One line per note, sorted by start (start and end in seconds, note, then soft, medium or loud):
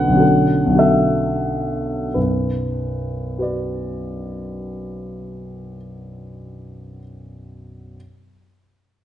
0.00 0.08 B1 soft
0.00 0.11 D3 soft
0.00 0.14 C#4 soft
0.00 0.16 F#4 soft
0.00 0.19 A4 soft
0.00 0.24 B4 medium
0.00 0.80 F#5 medium
0.08 0.64 B1 soft
0.08 0.67 D3 soft
0.14 0.70 C#4 soft
0.14 0.73 F#4 soft
0.19 0.76 A4 soft
0.66 2.04 B1 soft
0.66 2.05 D3 soft
0.72 2.07 C#4 soft
0.72 2.08 F#4 soft
0.78 2.10 A4 soft
0.78 2.14 E5 medium
2.14 5.76 B1 soft
2.14 5.76 F#2 soft
2.14 3.38 B4 soft
3.38 6.99 F#4 soft
3.38 7.00 B4 soft
3.38 7.03 D5 soft